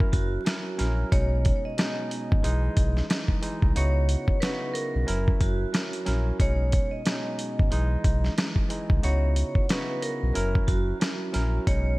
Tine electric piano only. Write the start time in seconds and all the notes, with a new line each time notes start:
Already playing: F#3 C#4 E4 A#4
0.45 F#3 C#4 E4 A#4
0.77 F#3 C#4 E4 A#4
1.11 B2 G#3 C#4 D#4
1.78 B2 G#3 C#4 D#4
2.43 E3 G#3 D#4
3.09 E3 G#3 D#4
3.41 E3 G#3 D#4
3.75 C#3 B3 D#4 E4 F#4
4.42 C#3 B3 D#4 E4 F#4
5.06 F#3 C#4 E4 A#4
5.72 F#3 C#4 E4 A#4
6.05 F#3 C#4 E4 A#4
6.39 B2 G#3 C#4 D#4
7.05 B2 G#3 C#4 D#4
7.70 E3 G#3 D#4
8.37 E3 G#3 D#4
8.69 E3 G#3 D#4
9.02 C#3 B3 D#4 E4 F#4
9.69 C#3 B3 D#4 E4 F#4
10.34 F#3 C#4 E4 A#4
11.00 F#3 C#4 E4 A#4
11.32 F#3 C#4 E4 A#4
11.66 B2 G#3 C#4 D#4